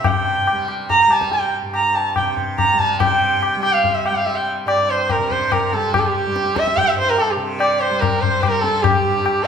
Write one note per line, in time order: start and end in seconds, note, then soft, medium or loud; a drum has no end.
0.00 1.62 G2 medium
0.00 2.17 C3 medium
0.00 0.52 G3 medium
0.04 0.69 G5 medium
0.04 tabla na medium
0.04 tabla ge medium
0.47 tabla na medium
0.52 1.07 G3 medium
0.68 tabla na medium
0.90 1.13 A#5 loud
0.90 tabla tin medium
0.90 tabla ge medium
1.07 2.73 G3 medium
1.07 tabla na medium
1.12 1.32 A5 medium
1.21 tabla ke medium
1.31 1.52 G5 medium
1.31 tabla tin medium
1.63 4.65 G2 medium
1.74 1.97 A#5 medium
1.74 tabla na medium
1.95 2.16 A5 medium
1.95 tabla na medium
2.16 3.00 C3 medium
2.16 2.36 G5 medium
2.16 tabla na medium
2.16 tabla ge medium
2.37 tabla ge medium
2.58 2.80 A#5 medium
2.58 tabla na medium
2.58 tabla ge medium
2.73 3.56 G3 medium
2.79 2.99 A5 medium
2.79 tabla ge soft
2.99 5.18 C3 medium
2.99 3.59 G5 medium
2.99 tabla na loud
2.99 tabla ge loud
3.43 tabla na medium
3.56 4.10 G3 medium
3.62 3.75 G5 loud
3.62 tabla na medium
3.73 3.96 F5 loud
3.84 tabla tin medium
3.84 tabla ge medium
3.94 4.08 E5 medium
4.06 4.17 G5 medium
4.06 tabla na medium
4.10 5.72 G3 medium
4.15 4.27 F5 medium
4.26 4.37 E5 medium
4.26 tabla tin medium
4.36 4.47 G5 medium
4.65 6.82 G2 medium
4.65 4.92 D5 medium
4.65 tabla na medium
4.90 5.12 C5 medium
5.09 5.33 A#4 medium
5.09 tabla na medium
5.09 tabla ge medium
5.18 7.36 C3 medium
5.31 5.53 C5 medium
5.31 tabla ge medium
5.52 5.76 A#4 medium
5.52 tabla na medium
5.52 tabla ge medium
5.72 6.26 G3 medium
5.72 5.94 A4 medium
5.72 tabla te medium
5.94 6.01 G4 loud
5.94 tabla na loud
5.94 tabla ge loud
5.99 6.08 A4 medium
6.07 6.59 G4 medium
6.26 7.90 G3 medium
6.36 tabla te medium
6.46 tabla te medium
6.56 6.79 E5 loud
6.56 tabla ke medium
6.67 tabla te medium
6.77 6.89 G5 loud
6.77 tabla tin medium
6.77 tabla ge medium
6.82 8.97 G2 medium
6.88 6.98 E5 medium
6.99 7.11 C5 medium
7.09 7.22 A#4 loud
7.18 7.32 A4 medium
7.18 tabla tin medium
7.30 7.40 G4 medium
7.36 9.47 C3 medium
7.60 7.82 D5 medium
7.60 tabla na medium
7.81 8.02 C5 medium
7.81 tabla na medium
7.90 8.44 G3 medium
8.01 8.22 A#4 medium
8.01 tabla na medium
8.01 tabla ge medium
8.21 8.44 C5 medium
8.21 tabla ge medium
8.42 9.47 G3 medium
8.42 8.63 A#4 medium
8.42 tabla na medium
8.42 tabla ge medium
8.62 8.84 A4 loud
8.62 tabla te medium
8.82 9.46 G4 loud
8.82 tabla na loud
8.82 tabla ge loud
8.98 9.47 G2 medium
9.26 tabla na medium
9.44 9.47 G5 loud